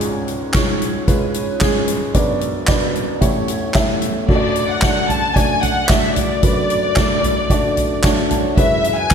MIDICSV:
0, 0, Header, 1, 4, 480
1, 0, Start_track
1, 0, Tempo, 535236
1, 9, Time_signature, 4, 2, 24, 8
1, 8200, End_track
2, 0, Start_track
2, 0, Title_t, "Violin section"
2, 0, Program_c, 0, 48
2, 3843, Note_on_c, 0, 74, 77
2, 4180, Note_off_c, 0, 74, 0
2, 4204, Note_on_c, 0, 78, 80
2, 4564, Note_on_c, 0, 81, 87
2, 4566, Note_off_c, 0, 78, 0
2, 4800, Note_on_c, 0, 80, 80
2, 4805, Note_off_c, 0, 81, 0
2, 5042, Note_on_c, 0, 78, 83
2, 5044, Note_off_c, 0, 80, 0
2, 5280, Note_on_c, 0, 76, 82
2, 5285, Note_off_c, 0, 78, 0
2, 5523, Note_off_c, 0, 76, 0
2, 5523, Note_on_c, 0, 74, 78
2, 7446, Note_off_c, 0, 74, 0
2, 7688, Note_on_c, 0, 76, 90
2, 8023, Note_off_c, 0, 76, 0
2, 8041, Note_on_c, 0, 80, 104
2, 8200, Note_off_c, 0, 80, 0
2, 8200, End_track
3, 0, Start_track
3, 0, Title_t, "Upright piano"
3, 0, Program_c, 1, 0
3, 0, Control_c, 1, 64, 127
3, 0, Note_on_c, 1, 37, 61
3, 0, Note_on_c, 1, 44, 63
3, 0, Note_on_c, 1, 56, 73
3, 0, Note_on_c, 1, 61, 74
3, 0, Note_on_c, 1, 65, 64
3, 0, Note_on_c, 1, 73, 77
3, 0, Note_on_c, 1, 80, 66
3, 346, Note_off_c, 1, 56, 0
3, 346, Note_off_c, 1, 65, 0
3, 346, Note_off_c, 1, 73, 0
3, 347, Note_off_c, 1, 61, 0
3, 486, Note_on_c, 1, 65, 60
3, 487, Note_on_c, 1, 61, 67
3, 488, Note_on_c, 1, 56, 63
3, 490, Note_on_c, 1, 73, 83
3, 851, Note_off_c, 1, 61, 0
3, 851, Note_off_c, 1, 65, 0
3, 852, Note_off_c, 1, 56, 0
3, 853, Note_off_c, 1, 73, 0
3, 963, Note_on_c, 1, 56, 75
3, 965, Note_on_c, 1, 71, 85
3, 968, Note_on_c, 1, 61, 65
3, 970, Note_on_c, 1, 65, 72
3, 1329, Note_off_c, 1, 56, 0
3, 1330, Note_off_c, 1, 71, 0
3, 1331, Note_off_c, 1, 61, 0
3, 1332, Note_off_c, 1, 65, 0
3, 1443, Note_on_c, 1, 56, 80
3, 1444, Note_on_c, 1, 61, 69
3, 1445, Note_on_c, 1, 68, 92
3, 1446, Note_on_c, 1, 65, 65
3, 1654, Note_off_c, 1, 37, 0
3, 1654, Note_off_c, 1, 44, 0
3, 1809, Note_off_c, 1, 56, 0
3, 1809, Note_off_c, 1, 61, 0
3, 1810, Note_off_c, 1, 65, 0
3, 1810, Note_off_c, 1, 68, 0
3, 1920, Note_on_c, 1, 59, 65
3, 1922, Note_on_c, 1, 62, 66
3, 1924, Note_on_c, 1, 42, 59
3, 1924, Note_on_c, 1, 66, 68
3, 1924, Note_on_c, 1, 74, 72
3, 1925, Note_on_c, 1, 35, 61
3, 1940, Control_c, 1, 64, 0
3, 1941, Note_off_c, 1, 80, 0
3, 2096, Control_c, 1, 64, 127
3, 2287, Note_off_c, 1, 59, 0
3, 2288, Note_off_c, 1, 62, 0
3, 2289, Note_off_c, 1, 66, 0
3, 2289, Note_off_c, 1, 74, 0
3, 2401, Note_on_c, 1, 62, 55
3, 2403, Note_on_c, 1, 66, 59
3, 2404, Note_on_c, 1, 59, 68
3, 2405, Note_on_c, 1, 74, 78
3, 2768, Note_off_c, 1, 62, 0
3, 2769, Note_off_c, 1, 59, 0
3, 2769, Note_off_c, 1, 66, 0
3, 2770, Note_off_c, 1, 74, 0
3, 2849, Note_off_c, 1, 42, 0
3, 2850, Note_off_c, 1, 35, 0
3, 2877, Note_on_c, 1, 64, 65
3, 2879, Note_on_c, 1, 33, 64
3, 2880, Note_on_c, 1, 40, 61
3, 2880, Note_on_c, 1, 57, 69
3, 2880, Note_on_c, 1, 67, 68
3, 2881, Note_on_c, 1, 73, 83
3, 2898, Control_c, 1, 64, 0
3, 3032, Control_c, 1, 64, 127
3, 3246, Note_off_c, 1, 64, 0
3, 3247, Note_off_c, 1, 57, 0
3, 3247, Note_off_c, 1, 67, 0
3, 3247, Note_off_c, 1, 73, 0
3, 3363, Note_on_c, 1, 64, 66
3, 3363, Note_on_c, 1, 67, 61
3, 3364, Note_on_c, 1, 57, 73
3, 3364, Note_on_c, 1, 76, 78
3, 3728, Note_off_c, 1, 64, 0
3, 3729, Note_off_c, 1, 57, 0
3, 3729, Note_off_c, 1, 67, 0
3, 3729, Note_off_c, 1, 76, 0
3, 3807, Note_off_c, 1, 33, 0
3, 3807, Note_off_c, 1, 40, 0
3, 3845, Note_on_c, 1, 54, 49
3, 3847, Note_on_c, 1, 66, 60
3, 3848, Note_on_c, 1, 57, 59
3, 3848, Note_on_c, 1, 62, 60
3, 3848, Note_on_c, 1, 73, 53
3, 3850, Note_on_c, 1, 42, 54
3, 3860, Control_c, 1, 64, 0
3, 3905, Note_off_c, 1, 73, 0
3, 3905, Note_on_c, 1, 74, 72
3, 4008, Control_c, 1, 64, 127
3, 4210, Note_off_c, 1, 66, 0
3, 4211, Note_off_c, 1, 57, 0
3, 4211, Note_off_c, 1, 62, 0
3, 4240, Note_off_c, 1, 74, 0
3, 4323, Note_on_c, 1, 57, 61
3, 4324, Note_on_c, 1, 74, 65
3, 4327, Note_on_c, 1, 66, 55
3, 4329, Note_on_c, 1, 62, 52
3, 4689, Note_off_c, 1, 57, 0
3, 4689, Note_off_c, 1, 74, 0
3, 4690, Note_off_c, 1, 66, 0
3, 4691, Note_off_c, 1, 62, 0
3, 4806, Note_on_c, 1, 57, 67
3, 4806, Note_on_c, 1, 74, 75
3, 4810, Note_on_c, 1, 62, 58
3, 4810, Note_on_c, 1, 66, 63
3, 5170, Note_off_c, 1, 57, 0
3, 5170, Note_off_c, 1, 74, 0
3, 5172, Note_off_c, 1, 62, 0
3, 5172, Note_off_c, 1, 66, 0
3, 5289, Note_on_c, 1, 62, 60
3, 5289, Note_on_c, 1, 66, 60
3, 5292, Note_on_c, 1, 57, 59
3, 5292, Note_on_c, 1, 74, 72
3, 5652, Note_off_c, 1, 62, 0
3, 5652, Note_off_c, 1, 66, 0
3, 5653, Note_off_c, 1, 57, 0
3, 5653, Note_off_c, 1, 74, 0
3, 5730, Note_off_c, 1, 54, 0
3, 5733, Note_off_c, 1, 42, 0
3, 5763, Note_on_c, 1, 66, 59
3, 5764, Note_on_c, 1, 62, 55
3, 5765, Note_on_c, 1, 54, 55
3, 5766, Note_on_c, 1, 57, 59
3, 5766, Note_on_c, 1, 71, 67
3, 5768, Note_on_c, 1, 42, 56
3, 6129, Note_off_c, 1, 62, 0
3, 6129, Note_off_c, 1, 66, 0
3, 6130, Note_off_c, 1, 57, 0
3, 6130, Note_off_c, 1, 71, 0
3, 6244, Note_on_c, 1, 62, 71
3, 6246, Note_on_c, 1, 57, 74
3, 6247, Note_on_c, 1, 66, 59
3, 6248, Note_on_c, 1, 74, 81
3, 6609, Note_off_c, 1, 62, 0
3, 6610, Note_off_c, 1, 57, 0
3, 6611, Note_off_c, 1, 66, 0
3, 6611, Note_off_c, 1, 74, 0
3, 6729, Note_on_c, 1, 57, 78
3, 6729, Note_on_c, 1, 66, 75
3, 6730, Note_on_c, 1, 62, 73
3, 6730, Note_on_c, 1, 74, 88
3, 7092, Note_off_c, 1, 57, 0
3, 7092, Note_off_c, 1, 62, 0
3, 7092, Note_off_c, 1, 66, 0
3, 7092, Note_off_c, 1, 74, 0
3, 7206, Note_on_c, 1, 57, 80
3, 7206, Note_on_c, 1, 62, 73
3, 7208, Note_on_c, 1, 66, 72
3, 7208, Note_on_c, 1, 78, 71
3, 7209, Note_on_c, 1, 73, 82
3, 7431, Note_off_c, 1, 78, 0
3, 7449, Note_on_c, 1, 81, 65
3, 7570, Note_off_c, 1, 57, 0
3, 7571, Note_off_c, 1, 62, 0
3, 7572, Note_off_c, 1, 66, 0
3, 7572, Note_off_c, 1, 73, 0
3, 7651, Note_off_c, 1, 54, 0
3, 7652, Note_off_c, 1, 42, 0
3, 7672, Note_off_c, 1, 81, 0
3, 7689, Note_on_c, 1, 66, 66
3, 7692, Note_on_c, 1, 71, 81
3, 7694, Note_on_c, 1, 42, 61
3, 7694, Note_on_c, 1, 56, 68
3, 7695, Note_on_c, 1, 64, 60
3, 7698, Control_c, 1, 64, 0
3, 7840, Control_c, 1, 64, 127
3, 8052, Note_off_c, 1, 66, 0
3, 8054, Note_off_c, 1, 71, 0
3, 8055, Note_off_c, 1, 56, 0
3, 8055, Note_off_c, 1, 64, 0
3, 8165, Note_on_c, 1, 66, 56
3, 8167, Note_on_c, 1, 56, 62
3, 8168, Note_on_c, 1, 71, 69
3, 8170, Note_on_c, 1, 64, 52
3, 8200, Note_off_c, 1, 42, 0
3, 8200, Note_off_c, 1, 56, 0
3, 8200, Note_off_c, 1, 64, 0
3, 8200, Note_off_c, 1, 66, 0
3, 8200, Note_off_c, 1, 71, 0
3, 8200, End_track
4, 0, Start_track
4, 0, Title_t, "Drums"
4, 7, Note_on_c, 9, 42, 75
4, 97, Note_off_c, 9, 42, 0
4, 249, Note_on_c, 9, 42, 51
4, 338, Note_off_c, 9, 42, 0
4, 477, Note_on_c, 9, 39, 77
4, 485, Note_on_c, 9, 38, 94
4, 485, Note_on_c, 9, 42, 77
4, 490, Note_on_c, 9, 36, 91
4, 567, Note_off_c, 9, 39, 0
4, 575, Note_off_c, 9, 38, 0
4, 575, Note_off_c, 9, 42, 0
4, 580, Note_off_c, 9, 36, 0
4, 732, Note_on_c, 9, 42, 58
4, 822, Note_off_c, 9, 42, 0
4, 966, Note_on_c, 9, 42, 74
4, 967, Note_on_c, 9, 36, 88
4, 1056, Note_off_c, 9, 42, 0
4, 1057, Note_off_c, 9, 36, 0
4, 1204, Note_on_c, 9, 42, 63
4, 1294, Note_off_c, 9, 42, 0
4, 1439, Note_on_c, 9, 39, 73
4, 1447, Note_on_c, 9, 38, 99
4, 1447, Note_on_c, 9, 42, 65
4, 1448, Note_on_c, 9, 36, 98
4, 1529, Note_off_c, 9, 39, 0
4, 1536, Note_off_c, 9, 38, 0
4, 1537, Note_off_c, 9, 42, 0
4, 1538, Note_off_c, 9, 36, 0
4, 1683, Note_on_c, 9, 42, 69
4, 1772, Note_off_c, 9, 42, 0
4, 1923, Note_on_c, 9, 42, 83
4, 1926, Note_on_c, 9, 36, 94
4, 2013, Note_off_c, 9, 42, 0
4, 2015, Note_off_c, 9, 36, 0
4, 2163, Note_on_c, 9, 42, 52
4, 2253, Note_off_c, 9, 42, 0
4, 2394, Note_on_c, 9, 39, 75
4, 2402, Note_on_c, 9, 38, 83
4, 2402, Note_on_c, 9, 42, 78
4, 2406, Note_on_c, 9, 36, 105
4, 2484, Note_off_c, 9, 39, 0
4, 2492, Note_off_c, 9, 38, 0
4, 2492, Note_off_c, 9, 42, 0
4, 2496, Note_off_c, 9, 36, 0
4, 2650, Note_on_c, 9, 42, 55
4, 2740, Note_off_c, 9, 42, 0
4, 2884, Note_on_c, 9, 36, 84
4, 2884, Note_on_c, 9, 42, 87
4, 2974, Note_off_c, 9, 36, 0
4, 2974, Note_off_c, 9, 42, 0
4, 3122, Note_on_c, 9, 42, 71
4, 3211, Note_off_c, 9, 42, 0
4, 3352, Note_on_c, 9, 39, 66
4, 3360, Note_on_c, 9, 38, 84
4, 3360, Note_on_c, 9, 42, 67
4, 3365, Note_on_c, 9, 36, 95
4, 3442, Note_off_c, 9, 39, 0
4, 3449, Note_off_c, 9, 38, 0
4, 3450, Note_off_c, 9, 42, 0
4, 3454, Note_off_c, 9, 36, 0
4, 3602, Note_on_c, 9, 42, 70
4, 3691, Note_off_c, 9, 42, 0
4, 3845, Note_on_c, 9, 36, 105
4, 3845, Note_on_c, 9, 49, 85
4, 3935, Note_off_c, 9, 36, 0
4, 3935, Note_off_c, 9, 49, 0
4, 4085, Note_on_c, 9, 42, 51
4, 4175, Note_off_c, 9, 42, 0
4, 4317, Note_on_c, 9, 39, 72
4, 4325, Note_on_c, 9, 38, 92
4, 4325, Note_on_c, 9, 42, 79
4, 4327, Note_on_c, 9, 36, 96
4, 4407, Note_off_c, 9, 39, 0
4, 4414, Note_off_c, 9, 42, 0
4, 4415, Note_off_c, 9, 38, 0
4, 4417, Note_off_c, 9, 36, 0
4, 4566, Note_on_c, 9, 43, 55
4, 4573, Note_on_c, 9, 42, 57
4, 4656, Note_off_c, 9, 43, 0
4, 4662, Note_off_c, 9, 42, 0
4, 4807, Note_on_c, 9, 36, 88
4, 4810, Note_on_c, 9, 42, 83
4, 4897, Note_off_c, 9, 36, 0
4, 4900, Note_off_c, 9, 42, 0
4, 5046, Note_on_c, 9, 42, 72
4, 5048, Note_on_c, 9, 43, 64
4, 5136, Note_off_c, 9, 42, 0
4, 5138, Note_off_c, 9, 43, 0
4, 5277, Note_on_c, 9, 39, 85
4, 5285, Note_on_c, 9, 38, 88
4, 5286, Note_on_c, 9, 42, 68
4, 5288, Note_on_c, 9, 36, 101
4, 5367, Note_off_c, 9, 39, 0
4, 5375, Note_off_c, 9, 38, 0
4, 5376, Note_off_c, 9, 42, 0
4, 5377, Note_off_c, 9, 36, 0
4, 5526, Note_on_c, 9, 42, 78
4, 5528, Note_on_c, 9, 43, 60
4, 5615, Note_off_c, 9, 42, 0
4, 5618, Note_off_c, 9, 43, 0
4, 5765, Note_on_c, 9, 42, 81
4, 5767, Note_on_c, 9, 36, 102
4, 5854, Note_off_c, 9, 42, 0
4, 5857, Note_off_c, 9, 36, 0
4, 6008, Note_on_c, 9, 42, 56
4, 6098, Note_off_c, 9, 42, 0
4, 6239, Note_on_c, 9, 39, 70
4, 6247, Note_on_c, 9, 38, 102
4, 6247, Note_on_c, 9, 42, 84
4, 6249, Note_on_c, 9, 36, 104
4, 6329, Note_off_c, 9, 39, 0
4, 6336, Note_off_c, 9, 42, 0
4, 6337, Note_off_c, 9, 38, 0
4, 6339, Note_off_c, 9, 36, 0
4, 6487, Note_on_c, 9, 43, 55
4, 6494, Note_on_c, 9, 42, 64
4, 6577, Note_off_c, 9, 43, 0
4, 6583, Note_off_c, 9, 42, 0
4, 6727, Note_on_c, 9, 36, 105
4, 6729, Note_on_c, 9, 42, 92
4, 6817, Note_off_c, 9, 36, 0
4, 6818, Note_off_c, 9, 42, 0
4, 6968, Note_on_c, 9, 42, 68
4, 6971, Note_on_c, 9, 43, 59
4, 7058, Note_off_c, 9, 42, 0
4, 7061, Note_off_c, 9, 43, 0
4, 7202, Note_on_c, 9, 39, 82
4, 7210, Note_on_c, 9, 36, 99
4, 7210, Note_on_c, 9, 38, 92
4, 7211, Note_on_c, 9, 42, 66
4, 7292, Note_off_c, 9, 39, 0
4, 7300, Note_off_c, 9, 36, 0
4, 7300, Note_off_c, 9, 38, 0
4, 7301, Note_off_c, 9, 42, 0
4, 7448, Note_on_c, 9, 42, 71
4, 7451, Note_on_c, 9, 43, 60
4, 7538, Note_off_c, 9, 42, 0
4, 7540, Note_off_c, 9, 43, 0
4, 7689, Note_on_c, 9, 42, 79
4, 7690, Note_on_c, 9, 36, 117
4, 7779, Note_off_c, 9, 36, 0
4, 7779, Note_off_c, 9, 42, 0
4, 7931, Note_on_c, 9, 42, 60
4, 8020, Note_off_c, 9, 42, 0
4, 8164, Note_on_c, 9, 39, 78
4, 8172, Note_on_c, 9, 36, 105
4, 8172, Note_on_c, 9, 38, 87
4, 8172, Note_on_c, 9, 42, 79
4, 8200, Note_off_c, 9, 36, 0
4, 8200, Note_off_c, 9, 38, 0
4, 8200, Note_off_c, 9, 39, 0
4, 8200, Note_off_c, 9, 42, 0
4, 8200, End_track
0, 0, End_of_file